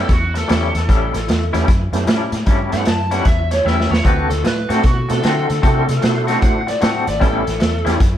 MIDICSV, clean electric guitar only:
0, 0, Header, 1, 3, 480
1, 0, Start_track
1, 0, Tempo, 395778
1, 1072, Time_signature, 4, 2, 24, 8
1, 9918, End_track
2, 0, Start_track
2, 0, Title_t, "Clean electric guitar"
2, 0, Program_c, 0, 27
2, 579, Note_on_c, 0, 45, 80
2, 587, Note_on_c, 0, 55, 79
2, 594, Note_on_c, 0, 61, 75
2, 600, Note_on_c, 0, 64, 86
2, 884, Note_off_c, 0, 64, 0
2, 888, Note_off_c, 0, 61, 0
2, 892, Note_off_c, 0, 45, 0
2, 896, Note_off_c, 0, 55, 0
2, 1074, Note_on_c, 0, 45, 84
2, 1083, Note_on_c, 0, 61, 83
2, 1084, Note_on_c, 0, 55, 89
2, 1090, Note_on_c, 0, 64, 92
2, 1365, Note_off_c, 0, 64, 0
2, 1367, Note_off_c, 0, 61, 0
2, 1372, Note_off_c, 0, 55, 0
2, 1380, Note_off_c, 0, 45, 0
2, 1859, Note_on_c, 0, 64, 98
2, 1863, Note_on_c, 0, 61, 87
2, 1868, Note_on_c, 0, 55, 78
2, 1873, Note_on_c, 0, 45, 67
2, 2020, Note_off_c, 0, 45, 0
2, 2025, Note_off_c, 0, 55, 0
2, 2031, Note_off_c, 0, 61, 0
2, 2033, Note_off_c, 0, 64, 0
2, 2507, Note_on_c, 0, 45, 79
2, 2514, Note_on_c, 0, 55, 77
2, 2519, Note_on_c, 0, 61, 78
2, 2525, Note_on_c, 0, 64, 76
2, 2808, Note_off_c, 0, 64, 0
2, 2809, Note_off_c, 0, 61, 0
2, 2816, Note_off_c, 0, 45, 0
2, 2820, Note_off_c, 0, 55, 0
2, 2983, Note_on_c, 0, 45, 82
2, 2987, Note_on_c, 0, 55, 76
2, 2993, Note_on_c, 0, 64, 79
2, 2997, Note_on_c, 0, 61, 95
2, 3274, Note_off_c, 0, 64, 0
2, 3281, Note_off_c, 0, 61, 0
2, 3283, Note_off_c, 0, 55, 0
2, 3294, Note_off_c, 0, 45, 0
2, 3775, Note_on_c, 0, 64, 91
2, 3778, Note_on_c, 0, 61, 82
2, 3782, Note_on_c, 0, 55, 77
2, 3788, Note_on_c, 0, 45, 77
2, 3932, Note_off_c, 0, 45, 0
2, 3933, Note_off_c, 0, 55, 0
2, 3939, Note_off_c, 0, 61, 0
2, 3941, Note_off_c, 0, 64, 0
2, 4427, Note_on_c, 0, 45, 78
2, 4427, Note_on_c, 0, 55, 78
2, 4435, Note_on_c, 0, 61, 79
2, 4442, Note_on_c, 0, 64, 91
2, 4717, Note_off_c, 0, 64, 0
2, 4723, Note_off_c, 0, 61, 0
2, 4731, Note_off_c, 0, 55, 0
2, 4736, Note_off_c, 0, 45, 0
2, 4900, Note_on_c, 0, 50, 82
2, 4910, Note_on_c, 0, 57, 80
2, 4918, Note_on_c, 0, 60, 88
2, 4921, Note_on_c, 0, 66, 93
2, 5194, Note_off_c, 0, 66, 0
2, 5197, Note_off_c, 0, 60, 0
2, 5205, Note_off_c, 0, 57, 0
2, 5212, Note_off_c, 0, 50, 0
2, 5687, Note_on_c, 0, 66, 98
2, 5693, Note_on_c, 0, 60, 82
2, 5696, Note_on_c, 0, 57, 85
2, 5707, Note_on_c, 0, 50, 68
2, 5851, Note_off_c, 0, 50, 0
2, 5857, Note_off_c, 0, 57, 0
2, 5857, Note_off_c, 0, 60, 0
2, 5862, Note_off_c, 0, 66, 0
2, 6339, Note_on_c, 0, 50, 75
2, 6341, Note_on_c, 0, 57, 77
2, 6349, Note_on_c, 0, 60, 86
2, 6350, Note_on_c, 0, 66, 81
2, 6627, Note_off_c, 0, 66, 0
2, 6630, Note_off_c, 0, 60, 0
2, 6638, Note_off_c, 0, 57, 0
2, 6651, Note_off_c, 0, 50, 0
2, 6817, Note_on_c, 0, 50, 83
2, 6825, Note_on_c, 0, 57, 87
2, 6825, Note_on_c, 0, 60, 84
2, 6831, Note_on_c, 0, 66, 90
2, 7112, Note_off_c, 0, 66, 0
2, 7117, Note_off_c, 0, 57, 0
2, 7122, Note_off_c, 0, 60, 0
2, 7130, Note_off_c, 0, 50, 0
2, 7607, Note_on_c, 0, 66, 94
2, 7620, Note_on_c, 0, 57, 81
2, 7620, Note_on_c, 0, 60, 85
2, 7625, Note_on_c, 0, 50, 75
2, 7772, Note_off_c, 0, 50, 0
2, 7780, Note_off_c, 0, 66, 0
2, 7781, Note_off_c, 0, 60, 0
2, 7783, Note_off_c, 0, 57, 0
2, 8257, Note_on_c, 0, 50, 79
2, 8267, Note_on_c, 0, 57, 78
2, 8268, Note_on_c, 0, 60, 80
2, 8271, Note_on_c, 0, 66, 82
2, 8548, Note_off_c, 0, 66, 0
2, 8557, Note_off_c, 0, 60, 0
2, 8561, Note_off_c, 0, 57, 0
2, 8571, Note_off_c, 0, 50, 0
2, 8728, Note_on_c, 0, 45, 79
2, 8738, Note_on_c, 0, 55, 88
2, 8743, Note_on_c, 0, 61, 92
2, 8744, Note_on_c, 0, 64, 93
2, 9037, Note_off_c, 0, 64, 0
2, 9038, Note_off_c, 0, 61, 0
2, 9046, Note_off_c, 0, 45, 0
2, 9046, Note_off_c, 0, 55, 0
2, 9519, Note_on_c, 0, 64, 96
2, 9529, Note_on_c, 0, 55, 78
2, 9529, Note_on_c, 0, 61, 88
2, 9537, Note_on_c, 0, 45, 79
2, 9682, Note_off_c, 0, 45, 0
2, 9682, Note_off_c, 0, 55, 0
2, 9685, Note_off_c, 0, 61, 0
2, 9686, Note_off_c, 0, 64, 0
2, 9918, End_track
3, 0, Start_track
3, 0, Title_t, "Muted clean electric guitar strokes"
3, 104, Note_on_c, 9, 29, 50
3, 226, Note_off_c, 9, 29, 0
3, 415, Note_on_c, 9, 29, 52
3, 536, Note_off_c, 9, 29, 0
3, 899, Note_on_c, 9, 29, 57
3, 1020, Note_off_c, 9, 29, 0
3, 1379, Note_on_c, 9, 29, 51
3, 1501, Note_off_c, 9, 29, 0
3, 1555, Note_on_c, 9, 29, 42
3, 1676, Note_off_c, 9, 29, 0
3, 2034, Note_on_c, 9, 29, 41
3, 2155, Note_off_c, 9, 29, 0
3, 2339, Note_on_c, 9, 29, 48
3, 2460, Note_off_c, 9, 29, 0
3, 2822, Note_on_c, 9, 29, 50
3, 2943, Note_off_c, 9, 29, 0
3, 3288, Note_on_c, 9, 29, 49
3, 3410, Note_off_c, 9, 29, 0
3, 3462, Note_on_c, 9, 29, 46
3, 3583, Note_off_c, 9, 29, 0
3, 3946, Note_on_c, 9, 29, 42
3, 4067, Note_off_c, 9, 29, 0
3, 4257, Note_on_c, 9, 29, 51
3, 4379, Note_off_c, 9, 29, 0
3, 4732, Note_on_c, 9, 29, 45
3, 4853, Note_off_c, 9, 29, 0
3, 5208, Note_on_c, 9, 29, 49
3, 5329, Note_off_c, 9, 29, 0
3, 5382, Note_on_c, 9, 29, 40
3, 5503, Note_off_c, 9, 29, 0
3, 5865, Note_on_c, 9, 29, 50
3, 5986, Note_off_c, 9, 29, 0
3, 6169, Note_on_c, 9, 29, 55
3, 6291, Note_off_c, 9, 29, 0
3, 6641, Note_on_c, 9, 29, 52
3, 6763, Note_off_c, 9, 29, 0
3, 7126, Note_on_c, 9, 29, 49
3, 7248, Note_off_c, 9, 29, 0
3, 7295, Note_on_c, 9, 29, 44
3, 7416, Note_off_c, 9, 29, 0
3, 7787, Note_on_c, 9, 29, 42
3, 7908, Note_off_c, 9, 29, 0
3, 8090, Note_on_c, 9, 29, 52
3, 8212, Note_off_c, 9, 29, 0
3, 8563, Note_on_c, 9, 29, 51
3, 8684, Note_off_c, 9, 29, 0
3, 9052, Note_on_c, 9, 29, 53
3, 9173, Note_off_c, 9, 29, 0
3, 9211, Note_on_c, 9, 29, 47
3, 9332, Note_off_c, 9, 29, 0
3, 9696, Note_on_c, 9, 29, 50
3, 9818, Note_off_c, 9, 29, 0
3, 9918, End_track
0, 0, End_of_file